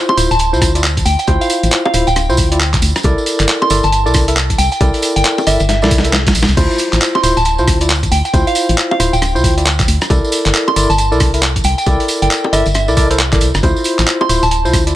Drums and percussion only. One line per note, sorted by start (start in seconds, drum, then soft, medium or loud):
0.09 high bongo medium
0.18 open hi-hat loud
0.18 tambourine medium
0.31 closed hi-hat soft
0.31 tambourine soft
0.39 closed hi-hat medium
0.39 tambourine soft
0.54 tambourine soft
0.62 kick loud
0.62 cross-stick medium
0.62 open hi-hat loud
0.62 tambourine medium
0.75 closed hi-hat medium
0.75 tambourine soft
0.83 clap loud
0.83 tambourine medium
0.97 kick medium
0.97 closed hi-hat medium
0.97 tambourine soft
1.05 open hi-hat loud
1.05 tambourine medium
1.19 closed hi-hat soft
1.19 tambourine soft
1.27 kick loud
1.27 closed hi-hat medium
1.27 tambourine soft
1.27 high bongo medium
1.41 open hi-hat medium
1.41 tambourine soft
1.50 open hi-hat loud
1.50 tambourine medium
1.63 closed hi-hat medium
1.63 tambourine soft
1.71 clap loud
1.71 closed hi-hat medium
1.71 tambourine soft
1.86 high bongo medium
1.94 cross-stick soft
1.94 open hi-hat loud
1.94 tambourine medium
2.07 closed hi-hat soft
2.07 tambourine soft
2.16 cross-stick medium
2.16 closed hi-hat medium
2.16 tambourine medium
2.30 tambourine soft
2.37 kick medium
2.37 open hi-hat loud
2.37 tambourine medium
2.52 closed hi-hat medium
2.52 tambourine soft
2.60 clap loud
2.60 tambourine soft
2.73 kick loud
2.73 clap medium
2.73 closed hi-hat medium
2.73 tambourine soft
2.82 open hi-hat loud
2.82 tambourine medium
2.96 cross-stick medium
2.96 closed hi-hat soft
2.96 tambourine soft
3.03 kick loud
3.03 closed hi-hat medium
3.03 tambourine soft
3.03 high bongo medium
3.18 tambourine soft
3.26 open hi-hat loud
3.26 tambourine medium
3.39 clap medium
3.39 closed hi-hat medium
3.39 tambourine soft
3.48 clap loud
3.48 closed hi-hat medium
3.48 tambourine soft
3.62 high bongo medium
3.70 open hi-hat loud
3.70 tambourine medium
3.83 closed hi-hat soft
3.83 tambourine soft
3.92 closed hi-hat medium
3.92 tambourine soft
4.06 tambourine soft
4.14 kick loud
4.14 cross-stick medium
4.14 open hi-hat loud
4.14 tambourine medium
4.28 closed hi-hat medium
4.28 tambourine soft
4.36 clap loud
4.36 tambourine soft
4.50 kick medium
4.50 closed hi-hat medium
4.50 tambourine soft
4.59 open hi-hat loud
4.59 tambourine medium
4.72 closed hi-hat soft
4.72 tambourine soft
4.81 kick loud
4.81 closed hi-hat medium
4.81 tambourine soft
4.81 high bongo medium
4.94 open hi-hat medium
4.94 tambourine soft
5.02 open hi-hat loud
5.02 tambourine medium
5.16 closed hi-hat medium
5.16 tambourine soft
5.25 clap loud
5.25 closed hi-hat medium
5.25 tambourine soft
5.38 tambourine soft
5.38 high bongo medium
5.47 cross-stick soft
5.47 open hi-hat loud
5.47 tambourine medium
5.60 closed hi-hat soft
5.60 tambourine soft
5.69 snare medium
5.69 closed hi-hat medium
5.69 tambourine soft
5.82 snare medium
5.82 tambourine soft
5.91 kick loud
5.91 open hi-hat loud
5.91 tambourine loud
5.98 snare medium
6.04 closed hi-hat medium
6.04 tambourine soft
6.13 snare medium
6.13 clap loud
6.13 tambourine medium
6.26 kick loud
6.26 snare loud
6.26 closed hi-hat medium
6.26 tambourine soft
6.35 open hi-hat loud
6.35 tambourine medium
6.43 snare loud
6.48 closed hi-hat soft
6.48 tambourine soft
6.57 kick loud
6.57 closed hi-hat medium
6.57 crash medium
6.57 tambourine medium
6.57 high bongo medium
6.71 tambourine soft
6.78 open hi-hat loud
6.78 tambourine medium
6.93 clap medium
6.93 closed hi-hat medium
6.93 tambourine soft
7.00 clap loud
7.00 closed hi-hat medium
7.00 tambourine medium
7.15 high bongo medium
7.23 open hi-hat loud
7.23 tambourine medium
7.37 closed hi-hat soft
7.37 tambourine soft
7.45 closed hi-hat medium
7.45 tambourine medium
7.58 tambourine soft
7.67 kick loud
7.67 cross-stick medium
7.67 open hi-hat loud
7.67 tambourine medium
7.81 closed hi-hat medium
7.81 tambourine soft
7.89 clap loud
7.89 tambourine medium
8.03 kick medium
8.03 closed hi-hat medium
8.03 tambourine soft
8.12 open hi-hat loud
8.12 tambourine medium
8.25 closed hi-hat soft
8.25 tambourine soft
8.34 kick loud
8.34 closed hi-hat medium
8.34 tambourine medium
8.34 high bongo medium
8.47 open hi-hat medium
8.47 tambourine soft
8.55 open hi-hat loud
8.55 tambourine loud
8.69 closed hi-hat medium
8.69 tambourine soft
8.78 clap loud
8.78 closed hi-hat medium
8.78 tambourine medium
8.91 high bongo medium
9.00 cross-stick soft
9.00 open hi-hat loud
9.00 tambourine loud
9.13 closed hi-hat soft
9.13 tambourine soft
9.22 cross-stick medium
9.22 closed hi-hat medium
9.22 tambourine medium
9.36 tambourine soft
9.44 kick loud
9.44 open hi-hat loud
9.44 tambourine medium
9.58 closed hi-hat medium
9.58 tambourine soft
9.66 clap loud
9.66 tambourine medium
9.79 kick loud
9.79 clap medium
9.79 closed hi-hat medium
9.79 tambourine soft
9.88 open hi-hat loud
9.88 tambourine medium
10.01 cross-stick medium
10.01 closed hi-hat soft
10.01 tambourine soft
10.10 kick loud
10.10 closed hi-hat medium
10.10 tambourine medium
10.10 high bongo medium
10.24 tambourine soft
10.32 open hi-hat loud
10.32 tambourine loud
10.46 clap medium
10.46 closed hi-hat medium
10.46 tambourine soft
10.54 clap loud
10.54 closed hi-hat medium
10.54 tambourine medium
10.68 high bongo medium
10.76 open hi-hat loud
10.76 tambourine medium
10.90 closed hi-hat soft
10.90 tambourine soft
10.98 closed hi-hat medium
10.98 tambourine soft
11.12 tambourine soft
11.20 kick loud
11.20 cross-stick medium
11.20 open hi-hat loud
11.20 tambourine medium
11.34 closed hi-hat medium
11.34 tambourine soft
11.42 clap loud
11.42 tambourine medium
11.56 kick medium
11.56 closed hi-hat medium
11.56 tambourine soft
11.64 open hi-hat loud
11.64 tambourine loud
11.78 closed hi-hat soft
11.78 tambourine soft
11.86 kick loud
11.86 closed hi-hat medium
11.86 tambourine medium
11.86 high bongo medium
12.00 open hi-hat medium
12.00 tambourine soft
12.08 open hi-hat medium
12.08 tambourine medium
12.22 closed hi-hat medium
12.22 tambourine soft
12.31 clap loud
12.31 closed hi-hat medium
12.31 tambourine soft
12.44 high bongo medium
12.53 cross-stick soft
12.53 open hi-hat loud
12.53 tambourine medium
12.66 closed hi-hat soft
12.66 tambourine soft
12.74 cross-stick medium
12.74 closed hi-hat medium
12.74 tambourine medium
12.88 tambourine soft
12.97 kick loud
12.97 open hi-hat loud
12.97 tambourine loud
13.11 closed hi-hat medium
13.11 tambourine soft
13.19 clap loud
13.19 tambourine medium
13.33 kick loud
13.33 clap medium
13.33 closed hi-hat medium
13.33 tambourine soft
13.41 open hi-hat loud
13.41 tambourine medium
13.54 cross-stick medium
13.54 closed hi-hat soft
13.54 tambourine soft
13.63 kick loud
13.63 closed hi-hat medium
13.63 tambourine medium
13.63 high bongo medium
13.76 tambourine soft
13.84 open hi-hat loud
13.84 tambourine loud
13.99 clap medium
13.99 closed hi-hat medium
13.99 tambourine soft
14.07 clap loud
14.07 closed hi-hat medium
14.07 tambourine medium
14.21 high bongo medium
14.29 open hi-hat loud
14.29 tambourine medium
14.43 closed hi-hat soft
14.43 tambourine soft
14.51 closed hi-hat medium
14.51 tambourine medium
14.65 tambourine soft
14.73 kick loud
14.73 cross-stick medium
14.73 open hi-hat loud
14.73 tambourine medium
14.87 closed hi-hat medium
14.87 tambourine soft